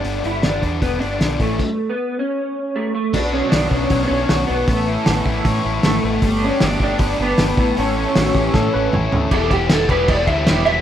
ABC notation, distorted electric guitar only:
X:1
M:4/4
L:1/8
Q:1/4=156
K:Amix
V:1 name="Distorted electric guitar"
[G,,D,G,B,D] [G,,D,G,B,D] [G,,D,G,B,D] [G,,D,G,B,D] [G,,D,G,B,D] [G,,D,G,B,D] [G,,D,G,B,D] [A,,E,A,CE] | z8 | B,, D B, D c D F B, | A, E B, E c E A B, |
G, D A, D B D G A,, | A,, C A, C A C E A, | [E,G,B,E] [G,B,E] [E,G,B,E] [G,B,E] [E,G,B,E] [E,G,B,E] [E,G,B,E] [G,B,E] |]